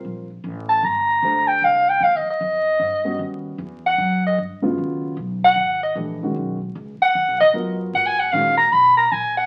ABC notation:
X:1
M:4/4
L:1/8
Q:"Swing" 1/4=152
K:Fphr
V:1 name="Soprano saxophone"
z3 =a b3 =g | f =g (3f e e- e4 | z3 ^f2 e z2 | [K:G#dor] z3 f2 d z2 |
z3 f2 d z2 | (3f g f e a b a g f |]
V:2 name="Grand piano"
[=G,CFB] z4 z [=A,=D=Gc]2- | [=A,=D=Gc] z6 [=G,_C_D_G]- | [=G,_CD_G]2 z4 z [D,^F,=B,=F]- | [K:G#dor] [_D,F,B,=F]2 z4 [=E,=A,=D=G] [^D,^G,C^F]- |
[D,G,CF] z4 z [F,B,EA]2- | [F,B,EA] z [D,G,CF] z4 z |]
V:3 name="Upright bass" clef=bass
B,,,2 =A,,,2 =G,,,2 =D,,2 | C,,2 E,, z F,,2 =G,,2 | E,,2 _F,,2 ^F,,2 =G,,2 | [K:G#dor] D,,2 B,,,2 G,,,2 A,,,2 |
B,,,2 C,, z (3D,, B,,, G,,, F,,2 | G,,2 A,,2 B,,2 A,,2 |]